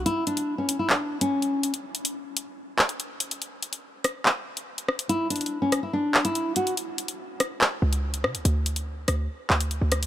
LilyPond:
<<
  \new Staff \with { instrumentName = "Nylon-string guitar" } { \time 4/4 \key d \lydian \tempo 4 = 143 e'8 d'8. cis'8 e'16 d'8. cis'4~ cis'16 | r1 | r1 | e'8 d'8. cis'8 e'16 d'8. e'8. fis'8 |
r1 | r1 | }
  \new Staff \with { instrumentName = "808-style bass" } { \clef bass \time 4/4 \key d \lydian r1 | r1 | r1 | r1 |
r2 r8 cis,4 cis16 cis,16 | d,4. d,8 r8 d,8. d,8. | }
  \new DrumStaff \with { instrumentName = "Drums" } \drummode { \time 4/4 hh8 hh16 hh16 r8 hh8 hc8. hh16 r16 hh8 hh16 | hh8 hh16 hh16 r8 hh8 r8 hc16 hh16 hh8 hh16 hh16 | hh8 hh16 hh16 r8 <hh ss>8 hc8. hh16 r16 hh16 ss16 hh16 | hh8 hh32 hh32 hh32 hh32 r8 <hh ss>8 r8 hc16 hh16 hh8 hh16 hh16 |
hh8 hh16 hh16 r8 <hh ss>8 hc8. hh16 r16 hh16 ss16 hh16 | hh8 hh16 hh16 r8 <hh ss>8 r8 hc16 hh16 hh8 <hh ss>16 hh16 | }
>>